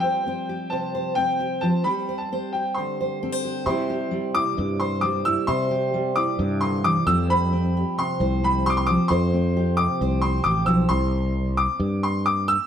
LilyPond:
<<
  \new Staff \with { instrumentName = "Upright piano" } { \time 4/4 \key c \major \tempo 4 = 133 g''4. a''4 g''4 a''8 | b''8. a''8. g''8 c'''4. r8 | c'''4. d'''4 c'''8 d'''8 e'''8 | c'''4. d'''4 c'''8 d'''8 e'''8 |
b''4. c'''4 b''8 c'''32 d'''32 c'''16 d'''8 | c'''4. d'''4 c'''8 d'''8 e'''8 | c'''4. d'''4 c'''8 d'''8 e'''8 | }
  \new Staff \with { instrumentName = "Steel-string acoustic guitar" } { \time 4/4 \key c \major << { <c' g' c''>8 c''8 g'8 c''8 c''8 c''8 g'8 c''8 | <c' g' c''>8 c''8 c''8 g'8 c''8 c''8 a'16 c''16 g'8 | <g e' g' c''>8 g'4 e'4 c''4 e'8 | c''8 g'4 e'2 <c' g' c''>8 |
c''4 g'4 c''4 g'8 c''8 | c''4 g'4 c''4 g'8 c''8 | r1 | } \\ { <f g>8 c'4 c4 c'4 f8 | g4 c'4 d4 c'4 | c4 g4 c4 g4 | c4 g4 c8 d8 e8 f8~ |
f8 c'4 c4 c'4 f8~ | f8 c'4 c4 c'4 f8 | r1 | } >> }
  \new Staff \with { instrumentName = "Fretless electric bass" } { \clef bass \time 4/4 \key c \major r1 | r1 | c2 g,2 | c2 g,4. f,8~ |
f,4. r8 c,2 | f,2 c,4 a,,8 b,,8 | c,2 g,2 | }
>>